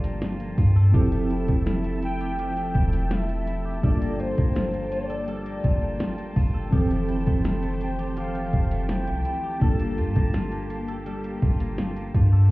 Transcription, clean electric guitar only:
0.00 0.94 G3 medium
0.00 0.39 A#3 medium
0.00 0.21 F4 medium
0.00 0.76 A4 medium
0.22 0.58 F4 medium
0.40 1.01 A#3 medium
0.58 1.30 F4 medium
0.76 0.94 A4 medium
0.94 2.39 F3 medium
0.94 2.20 G4 medium
1.12 1.48 A3 medium
1.30 1.65 E4 medium
1.48 1.84 A3 medium
1.66 2.02 E4 medium
1.85 2.56 A3 medium
2.03 2.74 E4 medium
2.21 2.39 G4 medium
2.39 3.83 F3 medium
2.39 3.65 G4 medium
2.57 2.93 A3 medium
2.75 3.10 E4 medium
2.93 3.29 A3 medium
3.11 3.46 E4 medium
3.29 4.01 A3 medium
3.47 3.91 E4 medium
3.65 3.84 G4 medium
3.83 5.27 G3 medium
3.83 5.09 A4 medium
4.01 4.36 A#3 medium
4.19 4.55 F4 medium
4.37 4.72 A#3 medium
4.56 4.91 F4 medium
4.74 5.45 A#3 medium
4.92 5.64 F4 medium
5.10 5.28 A4 medium
5.28 6.72 G3 medium
5.28 6.54 A4 medium
5.46 5.81 A#3 medium
5.64 6.00 F4 medium
5.82 6.17 A#3 medium
6.00 6.36 F4 medium
6.18 6.80 A#3 medium
6.36 7.08 F4 medium
6.54 6.73 A4 medium
6.72 8.17 F3 medium
6.72 7.99 G4 medium
6.90 7.26 A3 medium
7.09 7.43 E4 medium
7.27 7.62 A3 medium
7.45 7.81 E4 medium
7.63 8.35 A3 medium
7.99 8.17 G4 medium
8.17 9.61 F3 medium
8.17 9.43 G4 medium
8.35 8.71 A3 medium
8.71 9.07 A3 medium
8.89 9.24 E4 medium
9.07 9.80 A3 medium
9.26 9.69 E4 medium
9.44 9.62 G4 medium
9.62 11.06 G3 medium
9.62 10.88 A4 medium
9.80 10.15 A#3 medium
9.98 10.34 F4 medium
10.16 10.51 A#3 medium
10.34 10.70 F4 medium
10.52 11.23 A#3 medium
10.70 11.42 F4 medium
10.88 11.07 A4 medium
11.06 12.50 G3 medium
11.06 12.32 A4 medium
11.24 11.60 A#3 medium
11.42 11.78 F4 medium
11.61 11.95 A#3 medium
11.79 12.14 F4 medium
11.97 12.51 A#3 medium
12.15 12.51 F4 medium
12.33 12.51 A4 medium

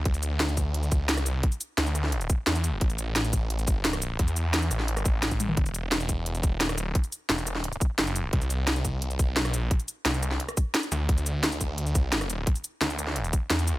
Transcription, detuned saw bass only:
0.06 1.02 D2 loud
1.02 1.29 C#2 loud
1.29 1.42 C2 loud
1.78 2.28 D2 loud
2.47 2.80 E2 loud
2.81 4.18 A1 loud
4.19 4.70 E2 loud
4.71 5.04 A1 loud
5.06 5.56 A1 loud
5.57 6.53 E1 loud
6.53 6.80 D#1 loud
6.80 6.94 D1 loud
7.30 7.80 E1 loud
7.99 8.32 F#1 loud
8.33 9.29 C2 loud
9.29 9.56 B1 loud
9.56 9.70 A#1 loud
10.06 10.39 C2 loud
10.92 11.08 D2 loud
11.09 12.46 D2 loud
12.81 13.32 D2 loud
13.50 13.79 E2 loud

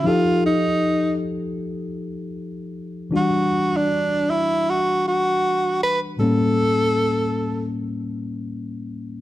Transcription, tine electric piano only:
0.04 3.08 F3 medium
0.04 3.08 D#4 medium
0.04 3.09 G4 medium
0.08 3.10 A4 medium
3.11 6.15 E3 medium
3.11 6.16 D4 medium
3.11 6.16 F#4 medium
3.15 6.17 G3 medium
6.19 9.21 A2 medium
6.19 9.21 G3 medium
6.19 9.21 A#3 medium
6.19 9.21 C#4 medium

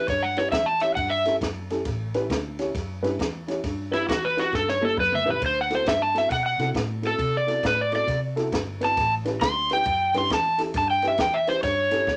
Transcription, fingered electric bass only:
0.08 0.50 G2 medium
0.52 0.95 E2 medium
0.96 1.39 G2 medium
1.41 1.83 F#2 medium
1.86 2.28 A1 medium
2.30 2.72 D2 medium
2.75 3.02 F#2 medium
3.03 3.18 G2 medium
3.19 3.61 E2 medium
3.64 4.06 G2 medium
4.09 4.51 E2 medium
4.53 4.95 G2 medium
4.97 5.39 F#2 medium
5.42 5.84 D2 medium
5.86 6.28 G2 medium
6.30 6.57 B2 medium
6.59 6.74 C3 medium
6.75 7.17 A2 loud
7.18 7.61 C3 medium
7.63 8.06 A2 medium
8.08 8.50 C3 medium
8.52 8.95 G1 medium
8.97 9.39 A1 medium
9.42 9.84 D2 medium
9.86 10.13 F#2 medium
10.14 10.29 G2 medium
10.30 10.72 E2 medium
10.75 11.17 G2 medium
11.19 11.61 E2 medium
11.63 12.05 G2 medium
12.07 12.17 D#2 medium

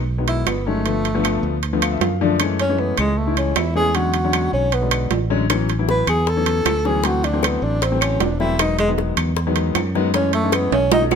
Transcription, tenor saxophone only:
0.28 0.49 E4 medium
0.48 0.68 B3 medium
0.67 1.63 A3 medium
2.61 2.81 C#4 medium
2.80 2.99 B3 medium
2.99 3.19 G#3 medium
3.18 3.37 A3 medium
3.38 3.58 C#4 medium
3.57 3.76 E4 medium
3.76 3.97 G#4 loud
3.96 4.53 F#4 medium
4.53 4.75 C#4 medium
4.74 5.12 B3 medium
5.90 6.07 B4 loud
6.09 6.30 G#4 medium
6.29 6.87 A4 loud
6.86 7.08 G#4 medium
7.06 7.26 F#4 medium
7.24 7.46 D4 loud
7.45 7.65 B3 medium
7.63 7.84 D4 loud
7.82 8.03 C4 medium
8.01 8.23 C#4 medium
8.22 8.40 D4 medium
8.40 8.63 E4 loud
8.61 8.79 D#4 medium
8.79 8.91 G#3 medium
10.15 10.33 C#4 medium
10.34 10.56 A3 medium
10.54 10.73 B3 medium
10.73 10.91 C#4 loud
10.93 11.04 D#4 medium

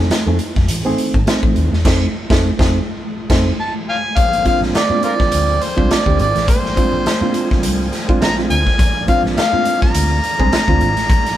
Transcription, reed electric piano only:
0.00 0.18 A3 medium
0.00 0.19 C4 medium
0.00 0.19 D#4 medium
0.00 0.19 G#4 loud
0.27 0.36 A3 medium
0.27 0.36 C4 medium
0.27 0.37 D#4 medium
0.27 0.37 G#4 medium
0.40 0.48 D#4 soft
0.40 0.48 G#4 soft
0.85 1.17 A3 loud
0.85 1.17 C4 loud
0.85 1.17 D#4 medium
0.85 1.17 G#4 loud
1.26 1.71 A3 medium
1.26 1.72 C4 medium
1.26 1.72 D#4 medium
1.26 1.72 G#4 loud
1.85 2.05 A3 medium
1.85 2.05 C4 medium
1.85 2.05 D#4 medium
1.85 2.06 G#4 medium
2.30 2.49 A3 loud
2.30 2.49 C4 medium
2.30 2.50 D#4 medium
2.30 2.50 G#4 loud
2.59 2.78 A3 medium
2.59 2.78 C4 loud
2.59 2.78 D#4 medium
2.59 2.79 G#4 loud
3.30 3.50 A3 loud
3.30 3.50 C4 loud
3.30 3.50 D#4 loud
3.30 3.51 G#4 medium
4.45 4.78 G#3 medium
4.45 4.78 C4 medium
4.45 4.78 D4 medium
4.45 4.78 F4 loud
4.90 5.54 G#3 medium
4.90 5.54 C4 medium
4.90 5.54 D4 medium
4.90 5.54 F4 medium
5.77 5.98 G#3 loud
5.77 5.98 C4 medium
5.77 5.98 D4 loud
5.77 5.98 F4 loud
6.05 6.26 G#3 medium
6.05 6.26 C4 medium
6.05 6.27 D4 medium
6.05 6.27 G4 medium
6.34 6.41 D4 soft
6.34 6.41 F4 soft
6.76 7.09 G#3 loud
6.76 7.09 C4 medium
6.76 7.09 D4 medium
6.76 7.10 F4 loud
7.21 7.85 G#3 medium
7.21 7.85 C4 medium
7.21 7.86 D4 medium
7.21 7.86 F4 loud
8.08 8.29 G#3 medium
8.08 8.29 C4 medium
8.08 8.29 D4 loud
8.08 8.30 F4 loud
8.38 8.58 G#3 medium
8.38 8.58 C4 medium
8.38 8.58 D4 medium
8.38 8.59 F4 medium
8.67 8.73 F4 soft
9.07 9.40 G#3 medium
9.07 9.40 C4 medium
9.07 9.40 D4 medium
9.07 9.41 F4 loud
9.53 10.16 G#3 medium
9.53 10.16 C4 medium
9.53 10.16 D4 medium
9.53 10.17 F4 medium
10.39 10.60 G#3 loud
10.39 10.60 C4 medium
10.39 10.60 D4 medium
10.39 10.60 G#4 loud
10.68 10.88 G#3 medium
10.68 10.89 C4 medium
10.68 10.89 D4 medium
10.68 10.89 F4 loud
10.97 11.03 D4 soft
10.97 11.03 F4 soft

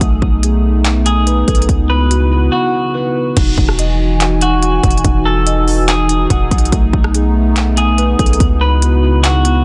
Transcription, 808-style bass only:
0.01 0.21 B1 loud
0.22 1.44 B1 loud
1.48 1.68 B1 loud
1.69 2.49 C#2 loud
3.37 3.57 E1 loud
3.58 4.80 E1 loud
4.84 5.04 E1 loud
5.04 6.26 E1 loud
6.30 6.50 E1 loud
6.51 6.71 B1 loud
6.72 6.92 B1 loud
6.93 8.15 B1 loud
8.19 8.39 B1 loud
8.40 9.64 C#2 loud

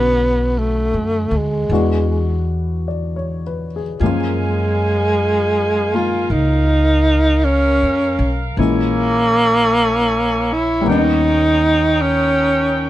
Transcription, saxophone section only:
4.01 6.29 A#4 soft
4.01 8.55 F5 soft
4.01 6.28 G#5 medium
6.29 8.56 A#4 medium
8.58 10.69 E4 medium
8.58 12.90 C#5 soft
8.58 10.69 G#5 medium
10.86 12.90 D#4 medium
10.86 12.90 A#4 soft
10.86 12.90 G5 medium

